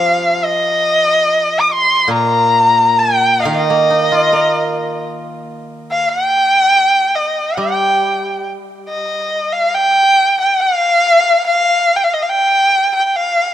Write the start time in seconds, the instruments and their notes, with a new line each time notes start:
Already playing: guzheng F3, erhu F5
0.45 erhu D#5
1.61 erhu D#6
1.72 erhu C6
2.08 guzheng A#2
2.13 erhu A#5
2.99 erhu G5
3.40 erhu D#5 F5
3.45 guzheng D#3
3.55 erhu D#5
3.70 guzheng A#3
3.90 guzheng D#4
4.12 guzheng F4
4.33 guzheng A#4
5.91 erhu F5
6.09 erhu G5
7.15 erhu D#5
7.57 guzheng G3, erhu G5
8.89 erhu D#5
9.52 erhu F5
9.74 erhu G5
10.41 erhu G5
10.60 erhu F5
11.47 erhu F5
11.96 erhu G5
12.04 erhu F5
12.14 erhu D#5
12.23 erhu F5
12.29 erhu G5
12.95 erhu G5
13.06 erhu G5
13.16 erhu F5